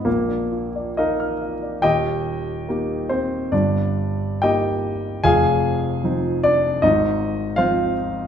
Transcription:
<<
  \new Staff \with { instrumentName = "Grand piano" } { \time 2/4 \key ees \major \tempo 4 = 73 bes4 <ees' bes' ees''>4 | <g' ees'' g''>4. <c' c''>8 | <d' d''>4 <g' ees'' g''>4 | <aes' f'' aes''>4. <d' d''>8 |
<ees' ees''>4 <f' c'' f''>8 r8 | }
  \new Staff \with { instrumentName = "Grand piano" } { \time 2/4 \key ees \major bes,,16 d'16 f'16 d''16 f''16 f'''16 f''16 d''16 | <ees,, ees,>4 <bes ees' g'>4 | <g,, g,>4 <bes ees'>4 | <f,, f,>4 <f c' ees'>4 |
<aes,, aes,>4 <f c'>4 | }
>>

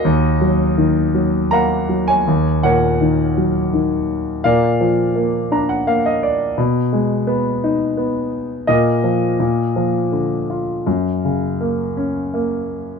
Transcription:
<<
  \new Staff \with { instrumentName = "Grand piano" } { \time 3/4 \key ees \minor \tempo 4 = 83 << { <ges' bes' ees''>2 <f'' ges'' bes''>8. <des'' aes''>16~ | <des'' aes''>8 <bes' des'' ges''>2~ <bes' des'' ges''>8 | <bes' d'' f''>2.~ | <bes' d'' f''>2. |
<bes' ees''>2.~ | <bes' ees''>2. | } \\ { r2. | r2. | r4. bes''16 ges''16 f''16 ees''16 d''8 | r2. |
r2. | r2. | } >> }
  \new Staff \with { instrumentName = "Grand piano" } { \clef bass \time 3/4 \key ees \minor ees,8 ges8 ees8 ges8 bes8 ges8 | ees,8 bes,8 ees8 ges8 ees4 | bes,8 f8 bes8 d'8 bes4 | ces8 aes8 ces'8 ees'8 ces'4 |
bes,8 f8 bes,8 f8 d8 f'8 | ges,8 des8 bes8 des'8 bes4 | }
>>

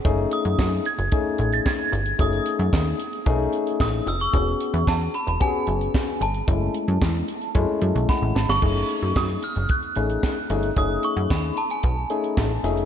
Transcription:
<<
  \new Staff \with { instrumentName = "Synth bell" } { \time 4/4 \key fis \dorian \tempo 4 = 112 r8 dis'''4 gis'''4~ gis'''16 a'''16 gis'''4 | dis'''2 r4 dis'''8 e'''16 cis'''16~ | cis'''4 a''8 b''16 b''16 gis''4. a''8~ | a''2. b''8. cis'''16~ |
cis'''4 dis'''8 eis'''8 fis'''2 | dis'''8 cis'''8 b''8 a''16 gis''4. r8. | }
  \new Staff \with { instrumentName = "Tine electric piano" } { \time 4/4 \key fis \dorian << { r1 | r1 | r1 | r2. fis''8 a''8 |
r1 | r2. a''8 e''8 | } \\ { <a cis' dis' gis'>4. r8 <a cis' dis' gis'>4. r8 | <a cis' dis' gis'>4. r8 <a cis' dis' gis'>4. r8 | <b cis' fis' gis'>4. r8 <b cis' fis' g' gis'>4. r8 | <gis a cis' e'>4. r8 <gis a cis' e'>4. r8 |
<a cis' dis' gis'>4. r4 <a cis' dis' gis'>8. r16 <a cis' dis' gis'>8 | <a cis' dis' gis'>4. r4 <a cis' dis' gis'>8. r16 <a cis' dis' gis'>8 | } >> }
  \new Staff \with { instrumentName = "Analog synth bass" } { \clef bass \time 4/4 \key fis \dorian fis,,8 r16 fis,16 fis,8 r16 fis,,16 r8 a,,8 r8 g,,8 | fis,,8 r16 fis,16 dis,8 r8 b,,8 r8 a,,8 eis,,8 | e,,8 r16 e,16 e,8 r16 e,,16 r8 fis,,8 r8 g,,8 | fis,,8 r16 fis,16 e,8 r8 fis,16 r16 fis,16 b,,16 r16 a,,16 gis,,16 g,,16 |
fis,,8 r16 fis,16 fis,8 r16 fis,,16 r8 a,,8 r8 g,,8 | fis,,8 r16 fis,16 dis,8 r8 b,,8 r8 a,,8 eis,,8 | }
  \new DrumStaff \with { instrumentName = "Drums" } \drummode { \time 4/4 <hh bd>8 hh16 hh16 <hc bd sn>8 hh16 hh16 <hh bd>8 hh16 hh16 <hc bd sn>8 hh16 hh16 | <hh bd>16 hh16 hh16 hh16 <hc bd sn>8 hh16 hh16 <hh bd>8 hh16 hh16 <hc bd sn>16 hh16 hh16 hh16 | <hh bd>8 hh16 hh16 <hc bd sn>8 hh16 hh16 <hh bd>8 hh16 hh16 <hc bd sn>8 hh16 hh16 | <hh bd>8 hh16 hh16 <hc bd sn>8 hh16 hh16 <hh bd>8 hh16 hh16 <bd sn>8 sn16 sn16 |
<cymc bd>8 hh16 hh16 <hc bd sn>8 hh16 hh16 <hh bd>16 hh16 hh16 hh16 <hc bd sn>8 hh16 hh16 | <hh bd>8 hh16 hh16 <hc bd sn>8 hh16 hh16 <hh bd>8 hh16 hh16 <hc bd sn>8 hh16 hh16 | }
>>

